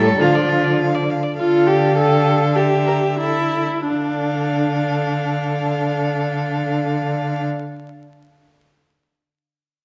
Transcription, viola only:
0, 0, Header, 1, 2, 480
1, 0, Start_track
1, 0, Key_signature, -1, "minor"
1, 0, Tempo, 590551
1, 156, Time_signature, 2, 2, 24, 8
1, 2076, Tempo, 641026
1, 2556, Tempo, 706714
1, 7073, End_track
2, 0, Start_track
2, 0, Title_t, "Viola"
2, 0, Program_c, 0, 41
2, 0, Note_on_c, 0, 55, 73
2, 160, Note_on_c, 0, 53, 50
2, 172, Note_off_c, 0, 55, 0
2, 881, Note_off_c, 0, 53, 0
2, 1123, Note_on_c, 0, 65, 56
2, 1357, Note_on_c, 0, 67, 49
2, 1370, Note_off_c, 0, 65, 0
2, 1592, Note_off_c, 0, 67, 0
2, 1608, Note_on_c, 0, 69, 60
2, 2080, Note_on_c, 0, 67, 48
2, 2091, Note_off_c, 0, 69, 0
2, 2556, Note_off_c, 0, 67, 0
2, 2560, Note_on_c, 0, 64, 53
2, 3026, Note_off_c, 0, 64, 0
2, 3034, Note_on_c, 0, 62, 40
2, 5445, Note_off_c, 0, 62, 0
2, 7073, End_track
0, 0, End_of_file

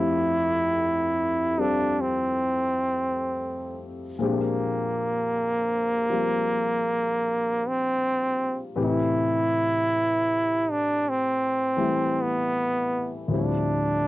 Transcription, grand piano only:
0, 0, Header, 1, 2, 480
1, 0, Start_track
1, 0, Tempo, 1125704
1, 1792, Time_signature, 4, 2, 24, 8
1, 2275, Tempo, 1138520
1, 5960, End_track
2, 0, Start_track
2, 0, Title_t, "Grand piano"
2, 0, Program_c, 0, 0
2, 0, Control_c, 0, 64, 127
2, 0, Note_on_c, 0, 41, 51
2, 0, Note_on_c, 0, 53, 49
2, 0, Note_on_c, 0, 57, 45
2, 0, Note_on_c, 0, 64, 47
2, 0, Note_on_c, 0, 67, 60
2, 674, Note_on_c, 0, 55, 40
2, 679, Note_on_c, 0, 60, 38
2, 682, Note_on_c, 0, 65, 33
2, 685, Note_on_c, 0, 69, 43
2, 1785, Note_on_c, 0, 46, 48
2, 1786, Note_off_c, 0, 53, 0
2, 1792, Note_off_c, 0, 55, 0
2, 1792, Note_off_c, 0, 60, 0
2, 1793, Note_on_c, 0, 53, 41
2, 1793, Note_on_c, 0, 56, 43
2, 1794, Note_off_c, 0, 41, 0
2, 1796, Note_off_c, 0, 57, 0
2, 1796, Note_off_c, 0, 65, 0
2, 1797, Note_off_c, 0, 64, 0
2, 1797, Note_off_c, 0, 69, 0
2, 1798, Note_off_c, 0, 67, 0
2, 1798, Control_c, 0, 64, 0
2, 1799, Note_on_c, 0, 60, 40
2, 1803, Note_on_c, 0, 62, 39
2, 1806, Note_on_c, 0, 67, 48
2, 1870, Control_c, 0, 64, 127
2, 2590, Note_off_c, 0, 53, 0
2, 2596, Note_on_c, 0, 53, 38
2, 2598, Note_on_c, 0, 55, 34
2, 2600, Note_off_c, 0, 60, 0
2, 2603, Note_on_c, 0, 58, 34
2, 2606, Note_on_c, 0, 60, 34
2, 2610, Note_on_c, 0, 65, 43
2, 3718, Note_off_c, 0, 46, 0
2, 3718, Note_off_c, 0, 67, 0
2, 3718, Note_on_c, 0, 45, 47
2, 3720, Note_on_c, 0, 71, 41
2, 3721, Note_off_c, 0, 56, 0
2, 3721, Note_on_c, 0, 52, 44
2, 3722, Note_off_c, 0, 53, 0
2, 3723, Note_on_c, 0, 48, 40
2, 3724, Note_off_c, 0, 55, 0
2, 3724, Note_on_c, 0, 67, 53
2, 3726, Note_off_c, 0, 58, 0
2, 3726, Note_off_c, 0, 62, 0
2, 3726, Control_c, 0, 64, 0
2, 3727, Note_off_c, 0, 60, 0
2, 3729, Note_off_c, 0, 65, 0
2, 3804, Control_c, 0, 64, 127
2, 4980, Note_off_c, 0, 52, 0
2, 4987, Note_on_c, 0, 52, 42
2, 4992, Note_on_c, 0, 57, 35
2, 4997, Note_on_c, 0, 55, 36
2, 5000, Note_on_c, 0, 64, 42
2, 5624, Note_off_c, 0, 45, 0
2, 5625, Note_on_c, 0, 38, 38
2, 5631, Note_off_c, 0, 52, 0
2, 5631, Note_on_c, 0, 45, 39
2, 5633, Note_off_c, 0, 57, 0
2, 5634, Note_off_c, 0, 55, 0
2, 5635, Note_off_c, 0, 71, 0
2, 5636, Note_on_c, 0, 53, 38
2, 5637, Note_off_c, 0, 48, 0
2, 5637, Note_off_c, 0, 64, 0
2, 5637, Note_off_c, 0, 67, 0
2, 5641, Note_on_c, 0, 55, 36
2, 5642, Control_c, 0, 64, 0
2, 5643, Note_on_c, 0, 60, 34
2, 5649, Note_on_c, 0, 64, 42
2, 5716, Control_c, 0, 64, 127
2, 5960, Note_off_c, 0, 38, 0
2, 5960, Note_off_c, 0, 45, 0
2, 5960, Note_off_c, 0, 53, 0
2, 5960, Note_off_c, 0, 55, 0
2, 5960, Note_off_c, 0, 60, 0
2, 5960, Note_off_c, 0, 64, 0
2, 5960, End_track
0, 0, End_of_file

